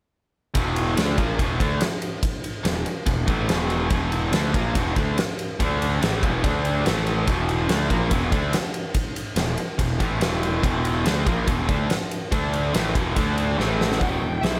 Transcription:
0.54 picked electric bass E1, distorted electric guitar E2 B2 E3, kick, ride
0.76 ride
0.97 picked electric bass D2, distorted electric guitar D3 A3 D4, snare, ride
1.18 picked electric bass A#1, distorted electric guitar A#2 F3 A#3, kick, ride
1.38 picked electric bass E1, distorted electric guitar E2 B2 E3, kick, ride
1.59 picked electric bass D2, distorted electric guitar D3 A3 D4, kick, ride
1.81 snare, ride
2.02 ride
2.23 kick, ride
2.44 ride
2.65 picked electric bass E1, distorted electric guitar E2 B2, snare, ride
2.86 ride
3.06 picked electric bass E1, distorted electric guitar E2 B2, kick, ride
3.26 picked electric bass A1, distorted electric guitar A2 E3 A3, kick, ride
3.48 picked electric bass E1, distorted electric guitar E2 B2 E3, snare, ride
3.70 ride
3.90 picked electric bass E1, distorted electric guitar E2 B2 E3, kick, ride
4.12 ride
4.32 picked electric bass D2, distorted electric guitar D3 A3 D4, snare, ride
4.53 picked electric bass A#1, distorted electric guitar A#2 F3 A#3, kick, ride
4.75 picked electric bass E1, distorted electric guitar E2 B2 E3, kick, ride
4.95 picked electric bass D2, distorted electric guitar D3 A3 D4, kick, ride
5.18 snare, ride
5.39 ride
5.59 picked electric bass D2, distorted electric guitar D3 A3 D4, kick, ride
5.82 ride
6.00 picked electric bass A1, distorted electric guitar A2 E3 A3, snare, ride
6.22 picked electric bass E1, distorted electric guitar E2 B2 E3, kick, ride
6.43 picked electric bass D2, distorted electric guitar D3 A3 D4, kick, ride
6.65 ride
6.86 picked electric bass A1, distorted electric guitar A2 E3 A3, snare, ride
7.07 ride
7.27 picked electric bass E1, distorted electric guitar E2 B2 E3, kick, ride
7.49 ride
7.69 picked electric bass D2, distorted electric guitar D3 A3 D4, snare, ride
7.90 picked electric bass A#1, distorted electric guitar A#2 F3 A#3, kick, ride
8.11 picked electric bass E1, distorted electric guitar E2 B2 E3, kick, ride
8.32 picked electric bass D2, distorted electric guitar D3 A3 D4, kick, ride
8.53 snare, ride
8.74 ride
8.94 kick, ride
9.16 ride
9.36 picked electric bass E1, distorted electric guitar E2 B2, snare, ride
9.58 ride
9.78 picked electric bass E1, distorted electric guitar E2 B2, kick, ride
9.98 picked electric bass A1, distorted electric guitar A2 E3 A3, kick, ride
10.19 picked electric bass E1, distorted electric guitar E2 B2 E3, snare, ride
10.43 ride
10.61 picked electric bass E1, distorted electric guitar E2 B2 E3, kick, ride
10.85 ride
11.04 picked electric bass D2, distorted electric guitar D3 A3 D4, snare, ride
11.25 picked electric bass A#1, distorted electric guitar A#2 F3 A#3, kick, ride
11.46 picked electric bass E1, distorted electric guitar E2 B2 E3, kick, ride
11.68 picked electric bass D2, distorted electric guitar D3 A3 D4, kick, ride
11.90 snare, ride
12.11 ride
12.31 picked electric bass D2, distorted electric guitar D3 A3 D4, kick, ride
12.53 ride
12.73 picked electric bass A1, distorted electric guitar A2 E3 A3, snare, ride
12.94 picked electric bass E1, distorted electric guitar E2 B2 E3, kick, ride
13.15 picked electric bass D2, distorted electric guitar D3 A3 D4, kick, ride
13.38 ride
13.58 picked electric bass A1, distorted electric guitar A2 E3 A3, snare
13.81 snare
13.92 snare
14.00 picked electric bass E1, distorted electric guitar E2 B2 E3, lead electric guitar G5, kick, open hi-hat
14.21 picked electric bass E1, distorted electric guitar E2 B2
14.41 picked electric bass B1, distorted electric guitar E2 B2 E3, lead electric guitar E5, snare, open hi-hat

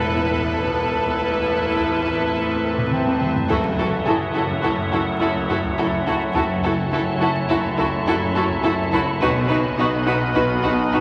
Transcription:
Already playing: double bass section E1, synth drone A1, cello section E2, viola section E4, violin section A4 B4 A5 B5 F#6, ambient pad B4 E5 A5
0.35 taiko
0.63 double bass section E1, synth drone A1, cello section E2, viola section E4, violin section A4 B4, ambient pad B4 E5 A5, taiko, swell
1.06 taiko
1.35 taiko
1.78 taiko
2.06 taiko
2.78 taiko low-mid
2.92 grand piano G5, taiko mid
3.07 taiko high
3.21 taiko mid
3.35 taiko low
3.48 synth drone F#1, double bass section F#1, cello section F#2, french horn section A3 E4, viola section E4, violin section F#4 A4, grand piano A4, ambient pad C#5 E5 F#5, taiko, impact
3.78 viola section E4, violin section F#4 A4
4.06 double bass section F#1, cello section F#2, viola section E4, violin section F#4 A4, grand piano G#4 G#5, taiko low
4.35 viola section E4, violin section F#4 A4
4.50 taiko low
4.63 double bass section F#1, cello section F#2, viola section E4, violin section F#4 A4, taiko
4.79 taiko low
4.92 viola section E4, violin section F#4 A4, taiko
5.21 double bass section F#1, cello section F#2, viola section E4, violin section F#4 A4
5.35 taiko
5.49 viola section E4, violin section F#4 A4, taiko low
5.64 taiko
5.78 double bass section F#1, cello section F#2, viola section E4, violin section F#4 A4
6.06 viola section E4, violin section F#4 A4, taiko
6.35 double bass section F#1, synth drone F#1, cello section F#2, french horn section A3 E4, viola section E4, violin section F#4 A4, ambient pad C#5 E5 A5, taiko
6.64 viola section E4, violin section F#4 A4
6.92 double bass section F#1, cello section F#2, viola section E4, violin section F#4 A4, taiko low
7.21 viola section E4, violin section F#4 A4
7.36 taiko low
7.49 double bass section F#1, cello section F#2, viola section E4, violin section F#4 A4, taiko
7.64 taiko low
7.78 viola section E4, violin section F#4 A4, taiko
8.07 double bass section F#1, cello section F#2, viola section E4, violin section F#4 A4
8.22 taiko
8.35 viola section E4, violin section F#4 A4, taiko low
8.50 taiko
8.64 double bass section F#1, cello section F#2, viola section E4, violin section F#4 A4
8.92 viola section E4, violin section F#4 A4, grand piano B5, taiko
9.21 double bass section B1, synth drone B1, cello section B2, french horn section B3 D#4, viola section D#4, violin section F#4 B4 D#6 F6 F#6, ambient pad B4 D#5 B5, taiko
9.49 viola section D#4, violin section F#4 B4
9.78 double bass section B1, cello section B2, viola section D#4, violin section F#4 B4
10.07 viola section D#4, violin section F#4 B4
10.35 double bass section B1, cello section B2, viola section D#4, violin section F#4 B4, taiko
10.63 viola section D#4, violin section F#4 B4, taiko
10.92 double bass section B1, cello section B2, viola section D#4, violin section F#4 B4

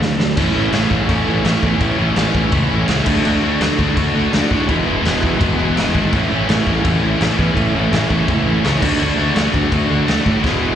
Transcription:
0.00 picked electric bass D2, distorted electric guitar D3 F#3, overdriven electric guitar A3 D4, snare
0.19 picked electric bass D2, distorted electric guitar D3 F#3, overdriven electric guitar A3 D4, snare
0.37 picked electric bass A1, distorted electric guitar A2 E3 A3 C#4 E4, kick, crash
0.55 picked electric bass A1, distorted electric guitar A2 E3 A3 C#4 E4
0.72 picked electric bass A1, distorted electric guitar A2 E3 A3 C#4 E4, snare, crash
0.90 picked electric bass A1, distorted electric guitar A2 E3 A3 C#4 E4, kick
1.08 picked electric bass A1, distorted electric guitar A2 E3 A3 C#4 E4, kick, crash
1.26 picked electric bass A1, distorted electric guitar A2 E3 A3 C#4 E4
1.44 picked electric bass A1, distorted electric guitar A2 E3 A3 C#4 E4, snare, crash
1.63 picked electric bass E2, distorted electric guitar A2 E3 A3 C#4 E4, kick
1.80 picked electric bass A1, distorted electric guitar A2 E3 A3 C#4 E4, kick, crash
1.99 picked electric bass A1, distorted electric guitar A2 E3 A3 C#4 E4
2.16 picked electric bass A1, distorted electric guitar A2 E3 A3 C#4 E4, snare, crash
2.35 picked electric bass A1, distorted electric guitar A2 E3 A3 C#4 E4, kick
2.52 picked electric bass C#2, distorted electric guitar A2 E3 A3 C#4 E4, kick, crash
2.71 picked electric bass A1, distorted electric guitar A2 E3 A3 C#4 E4
2.88 picked electric bass C#2, distorted electric guitar A2 E3 A3 C#4 E4, snare, crash
3.06 picked electric bass D2, distorted electric guitar D3 A3 D4 F#4, kick, crash
3.25 picked electric bass D2, distorted electric guitar D3 A3 D4 F#4, crash
3.43 picked electric bass D2, distorted electric guitar D3 A3 D4 F#4
3.61 picked electric bass D2, distorted electric guitar D3 A3 D4 F#4, snare, crash
3.78 picked electric bass D2, distorted electric guitar D3 A3 D4 F#4, kick
3.96 picked electric bass D2, distorted electric guitar D3 A3 D4 F#4, kick, crash
4.14 picked electric bass D2, distorted electric guitar D3 A3 D4 F#4
4.32 picked electric bass D2, distorted electric guitar D3 A3 D4 F#4, snare, crash
4.51 picked electric bass A2, distorted electric guitar D3 A3 D4 F#4, kick
4.67 picked electric bass E1, overdriven electric guitar E2 B2, distorted electric guitar E3 G#3 B3 E4, kick, crash
4.86 picked electric bass E1, distorted electric guitar E3 G#3 B3 E4
5.04 picked electric bass E1, distorted electric guitar E3 G#3 B3 E4, snare, crash
5.22 picked electric bass E1, distorted electric guitar E3 G#3 B3 E4, kick
5.40 picked electric bass G#1, distorted electric guitar E3 G#3 B3 E4, kick, crash
5.58 picked electric bass E1, distorted electric guitar E3 G#3 B3 E4
5.75 picked electric bass E1, distorted electric guitar E3 G#3 B3 E4, snare, crash
5.93 picked electric bass G#1, distorted electric guitar E3 G#3 B3 E4, kick
6.11 picked electric bass A1, distorted electric guitar A2 E3 A3 C#4 E4, kick, crash
6.30 picked electric bass A1, distorted electric guitar A2 E3 A3 C#4 E4
6.48 picked electric bass A1, distorted electric guitar A2 E3 A3 C#4 E4, snare, crash
6.66 picked electric bass A1, distorted electric guitar A2 E3 A3 C#4 E4, kick
6.84 picked electric bass A1, distorted electric guitar A2 E3 A3 C#4 E4, kick, crash
7.02 picked electric bass A1, distorted electric guitar A2 E3 A3 C#4 E4
7.20 picked electric bass A1, distorted electric guitar A2 E3 A3 C#4 E4, snare, crash
7.38 picked electric bass E2, distorted electric guitar A2 E3 A3 C#4 E4, kick
7.56 picked electric bass A1, distorted electric guitar A2 E3 A3 C#4 E4, kick, crash
7.74 picked electric bass A1, distorted electric guitar A2 E3 A3 C#4 E4
7.91 picked electric bass A1, distorted electric guitar A2 E3 A3 C#4 E4, snare, crash
8.10 picked electric bass A1, distorted electric guitar A2 E3 A3 C#4 E4, kick
8.28 picked electric bass C#2, distorted electric guitar A2 E3 A3 C#4 E4, kick, crash
8.46 picked electric bass A1, distorted electric guitar A2 E3 A3 C#4 E4
8.64 picked electric bass C#2, distorted electric guitar A2 E3 A3 C#4 E4, snare, crash
8.81 picked electric bass D2, distorted electric guitar D3 A3 D4 F#4, kick, crash
8.99 picked electric bass D2, distorted electric guitar D3 A3 D4 F#4, crash
9.17 picked electric bass D2, distorted electric guitar D3 A3 D4 F#4
9.35 picked electric bass D2, distorted electric guitar D3 A3 D4 F#4, snare, crash
9.53 picked electric bass D2, distorted electric guitar D3 A3 D4 F#4, kick
9.71 picked electric bass D2, distorted electric guitar D3 A3 D4 F#4, kick, crash
9.89 picked electric bass D2, distorted electric guitar D3 A3 D4 F#4
10.06 picked electric bass D2, distorted electric guitar D3 A3 D4 F#4, snare, crash
10.24 picked electric bass A2, distorted electric guitar D3 A3 D4 F#4, kick
10.42 picked electric bass E1, overdriven electric guitar E2 B2, distorted electric guitar E3 G#3 B3 E4, kick, snare
10.60 picked electric bass E1, distorted electric guitar E3 G#3 B3 E4

